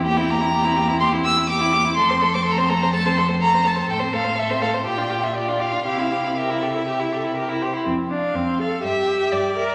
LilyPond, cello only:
\new Staff \with { instrumentName = "Cello" } { \clef bass \time 4/4 \key f \major \tempo 4 = 124 e,1 | f,1 | a,2 bes,2 | c2.~ c8 r8 |
f,4 f,4 g,4 g,4 | }